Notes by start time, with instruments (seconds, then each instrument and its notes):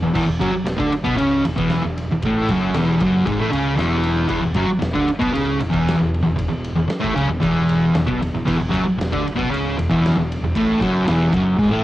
0.01 fingered electric bass E1, distorted electric guitar E2
0.14 fingered electric bass E1, distorted electric guitar E2 E3, kick, crash
0.26 fingered electric bass E1, distorted electric guitar E2
0.40 fingered electric bass F#1, distorted electric guitar F#2 F#3, kick, ride
0.52 muted distorted electric guitar stroke, muted fingered electric bass stroke
0.65 fingered electric bass E1, distorted electric guitar E2, snare, ride
0.77 fingered electric bass D2, distorted electric guitar D3 D4, kick
0.91 muted distorted electric guitar stroke, muted fingered electric bass stroke, ride
1.04 fingered electric bass B1, distorted electric guitar B2 B3, kick
1.16 fingered electric bass C#2, distorted electric guitar C#3 C#4, ride
1.45 fingered electric bass E1, distorted electric guitar E2, ride
1.56 fingered electric bass E1, distorted electric guitar E2 E3, kick
1.70 snare, ride
1.83 fingered electric bass E1, distorted electric guitar E2
1.98 ride
2.10 fingered electric bass E1, distorted electric guitar E2
2.22 fingered electric bass A1, distorted electric guitar A2, kick, ride
2.26 distorted electric guitar A3
2.49 fingered electric bass F#1, distorted electric guitar F#2 F#3, kick, ride
2.74 fingered electric bass E1, distorted electric guitar E2, snare, ride
2.78 distorted electric guitar E3
3.00 fingered electric bass F#1, distorted electric guitar F#2 F#3, kick, ride
3.26 fingered electric bass G#1, distorted electric guitar G#2 G#3, kick, ride
3.39 fingered electric bass A1, distorted electric guitar A2 A3
3.50 fingered electric bass C#2, distorted electric guitar C#3 C#4, ride
3.76 fingered electric bass E1, distorted electric guitar E2 E3, snare, ride
4.04 ride
4.28 fingered electric bass E1, distorted electric guitar E2 E3, kick, crash
4.41 fingered electric bass E1, distorted electric guitar E2
4.54 fingered electric bass F#1, distorted electric guitar F#2 F#3, kick, ride
4.68 muted distorted electric guitar stroke, muted fingered electric bass stroke
4.79 fingered electric bass E1, distorted electric guitar E2, snare, ride
4.93 fingered electric bass D2, distorted electric guitar D3 D4, kick
5.07 muted distorted electric guitar stroke, muted fingered electric bass stroke, ride
5.19 fingered electric bass B1, distorted electric guitar B2 B3, kick
5.33 fingered electric bass C#2, distorted electric guitar C#3 C#4, ride
5.59 fingered electric bass E1, distorted electric guitar E2, ride
5.70 fingered electric bass E1, distorted electric guitar E2 E3, kick
5.88 snare, ride
5.96 fingered electric bass E1, distorted electric guitar E2
6.14 ride
6.22 fingered electric bass E1, distorted electric guitar E2
6.36 fingered electric bass E1, distorted electric guitar E2, kick, ride
6.48 fingered electric bass E1, distorted electric guitar E2
6.64 ride
6.75 fingered electric bass E1, distorted electric guitar E2
6.88 muted distorted electric guitar stroke, muted fingered electric bass stroke, snare, ride
7.00 fingered electric bass A1, distorted electric guitar A2 A3, kick
7.15 fingered electric bass C#2, distorted electric guitar C#3 C#4, ride
7.29 fingered electric bass E1, distorted electric guitar E2
7.40 fingered electric bass E1, distorted electric guitar E2 E3, kick, ride
7.69 ride
7.94 fingered electric bass E1, distorted electric guitar E2, snare, ride
8.07 fingered electric bass B1, distorted electric guitar B2 B3, kick
8.20 fingered electric bass E1, distorted electric guitar E2, ride
8.33 fingered electric bass E1, distorted electric guitar E2
8.45 fingered electric bass E1, distorted electric guitar E2 E3, kick, crash
8.57 fingered electric bass E1, distorted electric guitar E2
8.69 distorted electric guitar F#2 F#3
8.73 fingered electric bass F#1, kick, ride
8.84 muted fingered electric bass stroke, muted distorted electric guitar stroke
8.97 fingered electric bass E1, distorted electric guitar E2
9.01 snare, ride
9.12 fingered electric bass D2, distorted electric guitar D3 D4, kick
9.22 muted distorted electric guitar stroke, muted fingered electric bass stroke
9.27 ride
9.35 fingered electric bass B1, distorted electric guitar B2 B3, kick
9.49 fingered electric bass C#2, distorted electric guitar C#3 C#4
9.54 ride
9.75 fingered electric bass E1, distorted electric guitar E2
9.79 ride
9.89 fingered electric bass E1, distorted electric guitar E2 E3, kick
10.06 snare, ride
10.15 fingered electric bass E1, distorted electric guitar E2
10.32 ride
10.40 fingered electric bass E1, distorted electric guitar E2
10.55 fingered electric bass A1, distorted electric guitar A2 A3, kick, ride
10.80 fingered electric bass F#1, distorted electric guitar F#2 F#3, kick, ride
11.07 fingered electric bass E1, distorted electric guitar E2 E3, snare, ride
11.33 fingered electric bass F#1, distorted electric guitar F#2 F#3, kick, ride
11.57 fingered electric bass G#1, distorted electric guitar G#2 G#3, kick, ride
11.70 fingered electric bass A1, distorted electric guitar A2 A3